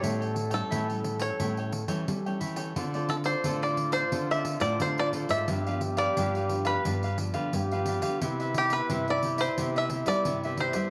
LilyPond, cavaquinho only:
\new Staff \with { instrumentName = "Cavaquinho" } { \time 4/4 \key c \major \tempo 4 = 88 <e' a' cis'' g''>16 <a' cis'' g''>16 r16 <a' cis'' g''>16 <e' a' cis'' g''>16 <a' cis'' g''>8 <a' cis'' g''>16 <e' a' cis'' g''>16 <a' cis'' g''>16 r16 <a' cis'' g''>8 <a' cis'' g''>16 <e' a' cis'' g''>16 <a' cis'' g''>16 | <f' a' c'' d''>16 <a' c'' d''>16 r16 <a' c'' d''>16 <f' a' c'' d''>16 <a' c'' d''>8 <a' c'' d''>16 <f' a' c'' d''>16 <a' c'' d''>16 r16 <a' c'' d''>8 <a' c'' d''>16 <f' a' c'' d''>16 <a' c'' d''>16 | <d' g' b' f''>16 <g' b' f''>16 r16 <g' b' f''>16 <d' g' b' f''>16 <g' b' f''>8 <g' b' f''>16 <d' g' b' f''>16 <g' b' f''>16 r16 <g' b' f''>8 <g' b' f''>16 <d' g' b' f''>16 <g' b' f''>16 | <g' b' c'' e''>16 <b' c'' e''>16 r16 <b' c'' e''>16 <g' b' c'' e''>16 <b' c'' e''>8 <b' c'' e''>16 <g' b' c'' e''>16 <b' c'' e''>16 r16 <b' c'' e''>8 <b' c'' e''>16 <g' b' c'' e''>16 <b' c'' e''>16 | }